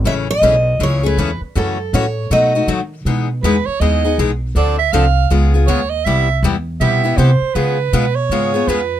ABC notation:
X:1
M:4/4
L:1/16
Q:"Swing" 1/4=160
K:E
V:1 name="Soprano saxophone"
z16 | z16 | z4 B2 c2 d4 z4 | =d2 e2 =f4 z4 c2 ^d2 |
e4 z4 e4 =c4 | B6 c6 B4 |]
V:2 name="Steel-string acoustic guitar"
e2 d6 c2 B4 z2 | A4 c4 d4 z4 | z16 | z16 |
z16 | z16 |]
V:3 name="Steel-string acoustic guitar"
[C,E,A,CG]2 z2 [C,E,A,CG] z3 [C,E,A,CG]2 [A,CG]2 [C,E,A,CG] z3 | [C,E,A,CF]2 z2 [C,E,A,CF] z3 [B,,F,A,DF]2 [A,DF]2 [B,,F,A,DF] z3 | [E,G,B,DG]2 z2 [E,G,B,DG] z3 [E,G,B,DG]2 [B,DG]2 [E,G,B,DG] z3 | [=D,=F,=C=DA]2 z2 [D,F,CDA] z3 [^C,G,B,^EG]2 [B,EG]2 [C,G,B,EG] z3 |
[=C,=G,B,E=G]2 z2 [C,G,B,EG] z3 [C,G,B,EG]2 [B,EG]2 [C,G,B,EG] z3 | [C,G,B,^EG]2 z2 [C,G,B,EG] z3 [C,G,B,EG]2 [B,EG]2 [C,G,B,EG] z3 |]
V:4 name="Upright bass" clef=bass
A,,,4 B,,,4 C,,4 E,,2 z2 | F,,4 A,,4 B,,4 D,4 | B,,4 E,,2 z2 D,,4 B,,,4 | =D,,4 =C,,4 ^C,,4 ^D,,4 |
=C,,4 E,,4 B,,4 =C,2 z2 | C,4 B,,4 G,,4 ^E,,4 |]